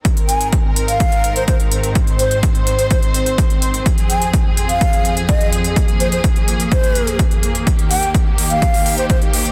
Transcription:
0.05 3.82 G#2 medium
0.05 3.82 D#3 medium
0.05 5.72 C4 medium
0.05 1.94 A#4 medium
0.05 kick loud
0.05 closed hi-hat medium
0.17 closed hi-hat soft
0.29 0.48 G#5 medium
0.29 closed hi-hat medium
0.41 closed hi-hat medium
0.53 kick loud
0.53 closed hi-hat medium
0.76 closed hi-hat medium
0.88 1.34 F5 medium
0.88 closed hi-hat medium
1.00 kick loud
1.00 closed hi-hat medium
1.12 closed hi-hat soft
1.24 closed hi-hat medium
1.36 1.44 C5 medium
1.36 closed hi-hat soft
1.48 1.55 C5 medium
1.48 kick loud
1.48 closed hi-hat medium
1.60 closed hi-hat soft
1.72 closed hi-hat medium
1.83 closed hi-hat soft
1.95 3.84 C5 medium
1.95 kick loud
1.95 closed hi-hat medium
2.07 closed hi-hat soft
2.19 2.38 C5 medium
2.19 closed hi-hat medium
2.31 closed hi-hat soft
2.43 kick loud
2.43 closed hi-hat medium
2.55 closed hi-hat soft
2.67 closed hi-hat medium
2.79 2.86 C5 medium
2.79 closed hi-hat soft
2.91 2.98 C5 medium
2.91 kick loud
2.91 closed hi-hat medium
3.02 closed hi-hat soft
3.14 closed hi-hat medium
3.26 closed hi-hat soft
3.38 kick loud
3.38 closed hi-hat medium
3.50 closed hi-hat soft
3.62 closed hi-hat medium
3.74 closed hi-hat soft
3.86 7.63 F2 medium
3.86 7.63 F3 medium
3.86 7.63 G#4 medium
3.86 kick loud
3.86 closed hi-hat medium
3.98 closed hi-hat soft
4.10 4.29 G#5 medium
4.10 closed hi-hat medium
4.22 closed hi-hat soft
4.33 kick loud
4.33 closed hi-hat medium
4.57 closed hi-hat medium
4.69 5.14 F5 medium
4.69 closed hi-hat soft
4.81 kick loud
4.81 closed hi-hat medium
4.93 closed hi-hat soft
5.05 closed hi-hat medium
5.17 closed hi-hat soft
5.29 5.48 D#5 medium
5.29 kick loud
5.29 closed hi-hat medium
5.41 closed hi-hat soft
5.53 closed hi-hat medium
5.64 closed hi-hat soft
5.76 9.52 A#3 medium
5.76 kick loud
5.76 closed hi-hat medium
5.88 closed hi-hat soft
6.00 6.08 C5 medium
6.00 closed hi-hat medium
6.12 6.20 C5 medium
6.12 closed hi-hat soft
6.24 kick loud
6.24 closed hi-hat medium
6.36 closed hi-hat soft
6.48 closed hi-hat medium
6.60 closed hi-hat soft
6.72 7.19 C5 medium
6.72 kick loud
6.72 closed hi-hat medium
6.84 closed hi-hat soft
6.95 closed hi-hat medium
7.07 closed hi-hat soft
7.19 kick loud
7.19 closed hi-hat medium
7.31 closed hi-hat soft
7.43 closed hi-hat medium
7.55 closed hi-hat soft
7.67 9.52 D#2 medium
7.67 9.52 D#3 medium
7.67 9.52 G4 medium
7.67 kick loud
7.67 closed hi-hat medium
7.79 closed hi-hat soft
7.91 8.10 G5 medium
7.91 open hi-hat loud
8.03 closed hi-hat soft
8.14 kick loud
8.14 closed hi-hat medium
8.38 open hi-hat loud
8.50 8.95 F5 medium
8.50 closed hi-hat soft
8.62 kick loud
8.62 closed hi-hat medium
8.74 open hi-hat medium
8.86 open hi-hat loud
8.98 9.05 C5 medium
8.98 closed hi-hat soft
9.10 9.17 C5 medium
9.10 kick loud
9.10 closed hi-hat medium
9.22 closed hi-hat soft
9.34 open hi-hat loud
9.45 closed hi-hat soft

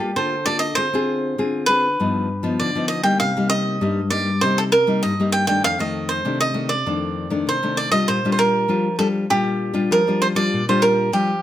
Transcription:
0.00 0.13 G3 medium
0.00 0.10 A#3 medium
0.00 0.10 F4 medium
0.00 0.18 G4 medium
0.00 0.10 A4 medium
0.16 0.74 D3 medium
0.16 0.34 A#3 soft
0.16 0.34 F4 soft
0.16 0.35 A4 medium
0.16 0.45 C5 medium
0.46 0.66 A#3 medium
0.46 0.66 F4 medium
0.46 0.66 A4 medium
0.46 0.59 D5 medium
0.59 0.76 D#5 medium
0.75 1.35 D3 medium
0.75 0.86 C4 soft
0.75 0.86 F4 soft
0.75 0.87 G#4 medium
0.75 1.70 C5 loud
0.93 1.34 C4 medium
0.93 1.34 F4 medium
0.93 1.34 G#4 medium
1.38 1.96 D3 medium
1.38 1.64 C4 medium
1.38 1.64 F4 medium
1.38 1.64 G#4 medium
1.66 1.86 C4 medium
1.66 1.87 F4 medium
1.66 1.87 G#4 medium
1.66 2.62 B4 medium
2.00 2.57 G2 medium
2.00 2.28 F3 medium
2.00 2.28 B3 soft
2.00 2.28 D#4 soft
2.43 2.69 F3 medium
2.43 2.70 B3 medium
2.43 2.70 D#4 medium
2.60 3.18 D3 medium
2.60 2.88 D5 medium
2.75 3.01 F3 medium
2.75 3.01 B3 medium
2.75 3.01 D#4 medium
2.88 3.03 D#5 medium
3.03 3.30 G3 medium
3.03 3.30 A#3 medium
3.03 3.31 D#4 medium
3.03 3.19 G5 medium
3.20 3.79 C3 medium
3.20 3.49 F5 medium
3.37 3.77 G3 medium
3.37 3.77 A#3 medium
3.37 3.78 D#4 medium
3.50 4.10 D#5 medium
3.81 4.39 G2 medium
3.81 3.99 G3 medium
3.81 4.00 A#3 medium
3.81 4.00 D#4 medium
4.10 4.29 G3 medium
4.10 4.29 A#3 medium
4.10 4.30 D#4 medium
4.10 4.43 D5 medium
4.41 5.00 C3 medium
4.41 4.71 G3 soft
4.41 4.71 A#3 soft
4.41 4.72 D#4 medium
4.41 4.58 C5 loud
4.58 4.63 A4 medium
4.72 5.01 A#4 medium
4.87 5.13 G3 medium
4.87 5.13 A#3 medium
4.87 5.14 D#4 medium
5.03 5.62 G2 medium
5.03 5.31 D#5 medium
5.20 5.45 G3 medium
5.20 5.45 A#3 medium
5.20 5.45 D#4 medium
5.32 5.46 G5 medium
5.47 5.74 D#3 medium
5.47 5.74 A3 medium
5.47 5.74 D4 medium
5.47 5.62 G5 medium
5.64 6.22 F2 medium
5.64 5.80 F5 loud
5.79 6.20 D#3 medium
5.79 6.20 A3 medium
5.79 6.11 D#5 medium
6.09 6.38 C5 medium
6.25 6.83 C3 medium
6.25 6.51 D#3 medium
6.25 6.51 A3 medium
6.25 6.51 D4 medium
6.41 6.69 D#5 medium
6.54 6.73 D#3 medium
6.54 6.73 A3 medium
6.54 6.73 D4 medium
6.69 7.48 D5 medium
6.86 7.44 F2 medium
6.86 7.27 D#3 medium
6.86 7.27 A3 soft
6.86 7.27 D4 medium
7.30 7.57 D#3 medium
7.30 7.57 A3 medium
7.30 7.57 D4 medium
7.47 8.05 C3 medium
7.47 7.76 C5 medium
7.63 7.88 D#3 medium
7.63 7.88 A3 medium
7.63 7.88 D4 medium
7.77 7.91 D5 medium
7.92 8.18 G3 medium
7.92 8.18 D4 medium
7.92 8.18 F4 medium
7.92 8.08 D#5 medium
8.08 8.66 A#2 medium
8.08 8.30 C5 medium
8.25 8.65 G3 medium
8.25 8.65 D4 medium
8.25 8.65 F4 medium
8.32 8.39 C5 medium
8.39 8.95 A#4 medium
8.68 9.26 F3 medium
8.68 8.87 G3 medium
8.68 8.87 D4 medium
8.68 8.87 F4 medium
8.99 9.25 G3 medium
8.99 9.25 D4 medium
8.99 9.25 F4 medium
8.99 9.07 A4 medium
9.30 9.88 A#2 medium
9.30 9.71 G3 medium
9.30 9.71 D4 soft
9.30 9.71 F4 medium
9.30 9.93 G4 medium
9.73 10.00 G3 medium
9.73 10.00 D4 medium
9.73 10.00 F4 medium
9.91 10.48 F3 medium
9.91 10.23 A#4 medium
10.07 10.32 G3 medium
10.07 10.32 D4 soft
10.07 10.33 F4 medium
10.22 10.27 C5 medium
10.35 10.61 G3 medium
10.35 10.61 D4 medium
10.35 10.62 F4 medium
10.35 10.64 D5 medium
10.53 11.10 A#2 medium
10.68 11.08 G3 medium
10.68 11.08 D4 medium
10.68 11.09 F4 medium
10.68 10.83 C5 medium
10.82 11.10 A#4 medium
11.12 11.42 F3 medium
11.12 11.30 G3 soft
11.12 11.30 D4 medium
11.12 11.31 F4 medium
11.12 11.42 G4 medium

